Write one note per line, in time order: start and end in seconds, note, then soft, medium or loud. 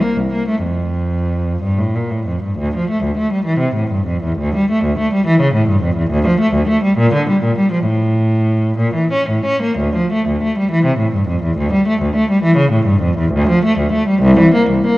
0.01 0.16 A#3 soft
0.16 0.32 C2 soft
0.32 0.48 A#3 soft
0.49 0.64 A3 soft
0.63 1.61 F2 medium
1.63 1.79 G2 soft
1.78 1.95 A2 soft
1.95 2.12 A#2 soft
2.10 2.28 A2 soft
2.27 2.44 F2 soft
2.43 2.59 G2 soft
2.59 2.74 D2 medium
2.76 2.90 F3 soft
2.90 3.05 A3 medium
3.04 3.18 D2 soft
3.18 3.33 A3 medium
3.33 3.47 G3 soft
3.46 3.61 E3 medium
3.59 3.76 C3 medium
3.75 3.92 A2 soft
3.91 4.08 G2 soft
4.07 4.23 F2 medium
4.23 4.40 E2 medium
4.39 4.55 D2 medium
4.55 4.70 G3 medium
4.70 4.84 A3 medium
4.84 4.98 D2 medium
4.99 5.12 A3 medium
5.13 5.27 G3 medium
5.26 5.40 E3 medium
5.41 5.55 C#3 medium
5.55 5.69 A2 medium
5.68 5.83 G2 medium
5.83 5.97 F2 medium
5.96 6.10 E2 medium
6.11 6.25 D2 medium
6.27 6.40 F3 medium
6.40 6.54 A3 medium
6.54 6.68 D2 medium
6.69 6.83 A3 medium
6.83 6.98 G3 medium
6.98 7.12 A#2 medium
7.14 7.27 D3 medium
7.29 7.43 G3 medium
7.44 7.57 A#2 medium
7.58 7.72 G3 medium
7.72 7.87 F3 medium
7.86 8.77 A2 medium
8.78 8.94 A#2 medium
8.95 9.11 E3 soft
9.13 9.28 C#4 soft
9.29 9.45 A2 soft
9.46 9.62 C#4 medium
9.63 9.79 A#3 medium
9.78 9.94 D2 medium
9.96 10.11 F3 medium
10.13 10.27 A3 medium
10.28 10.42 D2 soft
10.43 10.57 A3 medium
10.58 10.72 G3 medium
10.71 10.85 E3 medium
10.86 11.00 C3 medium
10.99 11.13 A2 medium
11.14 11.28 G2 medium
11.28 11.43 F2 medium
11.43 11.58 E2 medium
11.58 11.72 D2 medium
11.73 11.86 G3 medium
11.88 12.01 A3 medium
12.02 12.15 D2 medium
12.16 12.30 A3 medium
12.31 12.44 G3 medium
12.43 12.58 E3 medium
12.57 12.72 C#3 medium
12.72 12.87 A2 medium
12.87 13.02 G2 medium
13.02 13.18 F2 medium
13.18 13.34 E2 medium
13.32 13.49 D2 medium
13.49 13.65 F3 medium
13.64 13.79 A3 medium
13.79 13.94 D2 medium
13.93 14.08 A3 medium
14.08 14.23 G3 medium
14.22 14.38 C2 loud
14.39 14.54 E3 medium
14.54 14.69 A#3 medium
14.70 14.85 C2 medium
14.86 14.98 A#3 medium